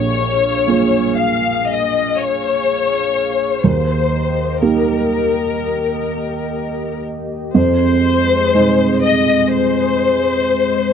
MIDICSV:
0, 0, Header, 1, 4, 480
1, 0, Start_track
1, 0, Key_signature, -4, "minor"
1, 0, Tempo, 1001669
1, 1281, Tempo, 967742
1, 1760, Time_signature, 4, 2, 24, 8
1, 2721, Tempo, 985222
1, 4641, Tempo, 1025641
1, 5302, End_track
2, 0, Start_track
2, 0, Title_t, "Violin section"
2, 0, Program_c, 0, 48
2, 0, Note_on_c, 0, 73, 76
2, 547, Note_off_c, 0, 73, 0
2, 566, Note_on_c, 0, 77, 66
2, 806, Note_off_c, 0, 77, 0
2, 806, Note_on_c, 0, 75, 64
2, 1045, Note_off_c, 0, 75, 0
2, 1045, Note_on_c, 0, 73, 69
2, 1759, Note_on_c, 0, 72, 64
2, 1760, Note_off_c, 0, 73, 0
2, 2240, Note_off_c, 0, 72, 0
2, 2240, Note_on_c, 0, 70, 63
2, 3418, Note_off_c, 0, 70, 0
2, 3678, Note_on_c, 0, 72, 98
2, 4380, Note_off_c, 0, 72, 0
2, 4398, Note_on_c, 0, 75, 80
2, 4640, Note_off_c, 0, 75, 0
2, 4640, Note_on_c, 0, 72, 88
2, 5302, Note_off_c, 0, 72, 0
2, 5302, End_track
3, 0, Start_track
3, 0, Title_t, "Ambient pad"
3, 0, Program_c, 1, 92
3, 0, Note_on_c, 1, 58, 49
3, 0, Note_on_c, 1, 68, 52
3, 0, Note_on_c, 1, 77, 52
3, 1739, Note_off_c, 1, 58, 0
3, 1757, Note_off_c, 1, 68, 0
3, 1758, Note_off_c, 1, 77, 0
3, 1761, Note_on_c, 1, 67, 52
3, 1762, Note_on_c, 1, 58, 48
3, 1763, Note_on_c, 1, 75, 54
3, 3659, Note_off_c, 1, 58, 0
3, 3675, Note_off_c, 1, 75, 0
3, 3676, Note_on_c, 1, 56, 60
3, 3678, Note_off_c, 1, 67, 0
3, 3680, Note_on_c, 1, 68, 54
3, 3680, Note_on_c, 1, 75, 58
3, 5302, Note_off_c, 1, 56, 0
3, 5302, Note_off_c, 1, 68, 0
3, 5302, Note_off_c, 1, 75, 0
3, 5302, End_track
4, 0, Start_track
4, 0, Title_t, "Felt piano"
4, 0, Program_c, 2, 0
4, 0, Control_c, 2, 64, 127
4, 0, Note_on_c, 2, 34, 46
4, 311, Note_off_c, 2, 34, 0
4, 324, Note_on_c, 2, 58, 32
4, 327, Note_on_c, 2, 65, 35
4, 330, Note_on_c, 2, 68, 34
4, 1739, Note_off_c, 2, 58, 0
4, 1740, Note_off_c, 2, 65, 0
4, 1742, Note_off_c, 2, 68, 0
4, 1760, Note_on_c, 2, 39, 49
4, 1769, Control_c, 2, 64, 0
4, 1849, Control_c, 2, 64, 127
4, 2226, Note_off_c, 2, 39, 0
4, 2246, Note_on_c, 2, 58, 38
4, 2247, Note_on_c, 2, 63, 43
4, 2249, Note_on_c, 2, 67, 43
4, 3660, Note_off_c, 2, 58, 0
4, 3661, Note_off_c, 2, 63, 0
4, 3661, Note_off_c, 2, 67, 0
4, 3680, Note_on_c, 2, 41, 56
4, 3685, Control_c, 2, 64, 0
4, 3760, Control_c, 2, 64, 127
4, 4146, Note_off_c, 2, 41, 0
4, 4168, Note_on_c, 2, 56, 42
4, 4169, Note_on_c, 2, 63, 42
4, 4173, Note_on_c, 2, 68, 47
4, 5302, Note_off_c, 2, 56, 0
4, 5302, Note_off_c, 2, 63, 0
4, 5302, Note_off_c, 2, 68, 0
4, 5302, End_track
0, 0, End_of_file